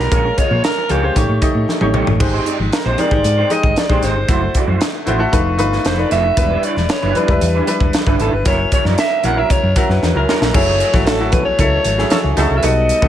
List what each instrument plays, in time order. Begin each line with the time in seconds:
Already playing: grand piano G3 D4 E4 F#4 B4 C#5, alto saxophone A#4
0.11 fingered electric bass A#1, grand piano G#3 C#4 F4 A#4, clean electric guitar C#4 F4 G#4 C#5, kick, closed hi-hat, muted conga
0.24 muted clean electric guitar stroke
0.37 clean electric guitar C#4 F4 G#4 D#5, alto saxophone C#5, kick, closed hi-hat
0.50 fingered electric bass A#2, clean electric guitar C#4 F4 G#4 C#5, high conga
0.64 alto saxophone A#4, muted clean electric guitar stroke, snare, closed hi-hat
0.77 muted clean electric guitar stroke, muted conga
0.89 fingered electric bass C#2, grand piano G#3 C#4 F4 A#4, clean electric guitar C#4 F4 G#4 C#5, alto saxophone G4, closed hi-hat, high conga, low conga
1.03 grand piano G#3 C#4 F4 C5, muted clean electric guitar stroke
1.15 fingered electric bass A1, grand piano A3 D#4 G4 C#5, muted clean electric guitar stroke, kick, closed hi-hat, low conga
1.28 fingered electric bass A2, muted clean electric guitar stroke, muted conga
1.41 grand piano A3 D#4 G4 D#5, kick, closed hi-hat, high conga
1.54 fingered electric bass A2, muted clean electric guitar stroke
1.68 snare, high conga
1.80 fingered electric bass A1, grand piano A3 D#4 G4 C#5, muted clean electric guitar stroke, high tom, muted conga
1.94 fingered electric bass B1, clean electric guitar A3 D#4 G4 C#5, mid tom, low conga
2.07 fingered electric bass A1, muted clean electric guitar stroke, floor tom
2.20 fingered electric bass G#1, grand piano G#3 D#4 G4 C5, muted clean electric guitar stroke, kick, crash
2.33 clean electric guitar C4 D#4 G4 C5
2.46 clean electric guitar C4 D#4 G4 D5, closed hi-hat
2.59 fingered electric bass G#1, muted clean electric guitar stroke, high conga
2.72 alto saxophone A#4, muted clean electric guitar stroke, snare, closed hi-hat
2.85 fingered electric bass A#1, clean electric guitar C4 D#4 G4 C5, alto saxophone C5, muted conga
2.98 grand piano G#3 D#4 G4 A#4, clean electric guitar C4 D#4 G4 C5, alto saxophone D5, closed hi-hat, high conga, low conga
3.11 fingered electric bass G#1, grand piano G#3 D#4 G4 C5, muted clean electric guitar stroke, kick
3.24 fingered electric bass G#2, muted clean electric guitar stroke, closed hi-hat, low conga
3.37 clean electric guitar C4 D#4 G4 C5, muted conga
3.50 grand piano G#3 D#4 G4 D#5, alto saxophone D#5, muted clean electric guitar stroke, closed hi-hat, high conga
3.63 fingered electric bass G#1, muted clean electric guitar stroke, kick
3.76 alto saxophone D5, muted clean electric guitar stroke, snare, closed hi-hat, high conga
3.89 fingered electric bass A#1, grand piano G#3 D#4 G4 C5, clean electric guitar C4 D#4 G4 C5, kick, muted conga
4.02 fingered electric bass G#1, clean electric guitar C4 D#4 G4 C5, alto saxophone C5, snare, closed hi-hat, low conga
4.15 fingered electric bass G1, muted clean electric guitar stroke
4.28 fingered electric bass F#1, grand piano A3 E4 F#4 C5, clean electric guitar A3 E4 F#4 C5, kick, closed hi-hat, muted conga
4.42 muted clean electric guitar stroke, muted conga
4.55 clean electric guitar A3 E4 F#4 D5, kick, closed hi-hat
4.68 fingered electric bass F#2, clean electric guitar A3 E4 F#4 C5, high conga
4.81 muted clean electric guitar stroke, snare, closed hi-hat
4.94 muted clean electric guitar stroke
5.06 fingered electric bass A1, grand piano A3 E4 F#4 C5, clean electric guitar A3 E4 F#4 C5, closed hi-hat, high conga, low conga
5.19 grand piano A3 E4 F#4 A4, muted clean electric guitar stroke
5.32 fingered electric bass F1, grand piano A3 D#4 F4 B4, muted clean electric guitar stroke, kick, closed hi-hat, low conga
5.46 muted clean electric guitar stroke
5.58 fingered electric bass G1, grand piano A3 D#4 F4 B4, closed hi-hat, high conga
5.71 muted clean electric guitar stroke, snare
5.85 fingered electric bass F1, alto saxophone C5, snare, closed hi-hat, muted conga, high conga
5.97 grand piano A3 D#4 F4 B4, alto saxophone D5, muted clean electric guitar stroke
6.10 fingered electric bass F1, clean electric guitar A3 D#4 F4 B4, alto saxophone E5, snare, closed hi-hat, low conga
6.24 muted clean electric guitar stroke
6.36 fingered electric bass E1, grand piano F#3 D4 E4 B4, muted clean electric guitar stroke, kick, closed hi-hat, muted conga
6.43 grand piano G3
6.50 clean electric guitar G3 D4 E4 B4, muted conga
6.62 clean electric guitar G3 D4 E4 C#5, alto saxophone D5, closed hi-hat
6.75 fingered electric bass E1, muted clean electric guitar stroke, snare, high conga
6.89 alto saxophone C#5, muted clean electric guitar stroke, snare, closed hi-hat
7.02 fingered electric bass F#1, clean electric guitar G3 D4 E4 B4, muted conga
7.14 clean electric guitar G3 D4 E4 B4, grand piano G3 D4 E4 B4, alto saxophone B4, closed hi-hat, high conga, low conga
7.28 fingered electric bass E1, grand piano G3 D4 E4 B4, muted clean electric guitar stroke, kick
7.41 fingered electric bass E2, muted clean electric guitar stroke, closed hi-hat, muted conga, low conga
7.54 clean electric guitar G3 D4 E4 B4
7.67 grand piano G3 D4 E4 B4, muted clean electric guitar stroke, closed hi-hat, high conga
7.80 fingered electric bass E1, muted clean electric guitar stroke, kick
7.93 muted clean electric guitar stroke, snare, closed hi-hat, high conga
8.06 fingered electric bass G1, grand piano G3 D4 E4 B4, clean electric guitar G3 D4 E4 B4, kick
8.19 fingered electric bass G#1, clean electric guitar G3 D4 E4 B4, alto saxophone A4, closed hi-hat, low conga
8.32 fingered electric bass G1, alto saxophone B4, muted clean electric guitar stroke
8.45 fingered electric bass F#1, grand piano F#3 C#4 E4 A#4, clean electric guitar F#3 C#4 E4 A#4, alto saxophone C#5, kick, closed hi-hat
8.58 muted clean electric guitar stroke
8.71 clean electric guitar F#3 C#4 E4 C#5, alto saxophone C#5, kick, closed hi-hat
8.84 fingered electric bass F#2, clean electric guitar F#3 C#4 E4 A#4, alto saxophone D5, snare, high conga
8.97 alto saxophone E5, muted clean electric guitar stroke, snare, closed hi-hat
9.10 muted clean electric guitar stroke
9.24 fingered electric bass A#1, clean electric guitar F#3 C#4 E4 A#4, grand piano F#3 C#4 E4 A#4, alto saxophone F#5, closed hi-hat, high conga, low conga
9.36 grand piano F#3 C#4 E4 A#4, alto saxophone E5, muted clean electric guitar stroke
9.50 alto saxophone C#5, muted clean electric guitar stroke, kick, closed hi-hat, muted conga, low conga
9.63 fingered electric bass F#2, muted clean electric guitar stroke, muted conga
9.76 grand piano F#3 C#4 E4 F#4, alto saxophone A#4, kick, closed hi-hat
9.89 fingered electric bass F#2, alto saxophone B4, muted clean electric guitar stroke, snare
10.02 fingered electric bass E2, snare, high conga
10.15 fingered electric bass C#2, grand piano F#3 C#4 E4 A#4, alto saxophone A#4, muted clean electric guitar stroke
10.28 clean electric guitar F#3 C#4 E4 A#4, snare, low conga
10.41 fingered electric bass A#1, muted clean electric guitar stroke, snare
10.54 fingered electric bass F#1, grand piano F#3 A3 C#4 E4 G#4, alto saxophone C#5, kick, crash
10.68 muted conga
10.80 closed hi-hat
10.93 fingered electric bass G#1, grand piano F#3 A3 C#4 E4 F#4, kick, snare, high conga
11.06 fingered electric bass A1, alto saxophone A4, snare, closed hi-hat
11.19 grand piano F#3 A3 C#4 E4 F#4, muted conga
11.32 fingered electric bass B1, alto saxophone B4, kick, closed hi-hat, high conga, low conga
11.45 alto saxophone C#5
11.58 fingered electric bass C#2, grand piano F#3 A3 C#4 E4 A4, kick, closed hi-hat, muted conga
11.84 fingered electric bass G#1, closed hi-hat, high conga
11.98 grand piano F#3 A3 C#4 E4 G#4, snare
12.10 horn section E3 C#4 A4, snare, closed hi-hat, muted conga, high conga
12.24 fingered electric bass C#2, muted conga
12.37 fingered electric bass C#2, grand piano F#3 A3 C#4 E4 G#4, horn section F#3 D#4 A4, closed hi-hat, low conga
12.50 fingered electric bass C2
12.57 alto saxophone E5
12.63 fingered electric bass B1, grand piano G3 B3 D#4 F#4 A4, alto saxophone D#5, closed hi-hat, muted conga
12.89 closed hi-hat
13.02 fingered electric bass C#2, grand piano G3 B3 D#4 F#4 A4, kick, high conga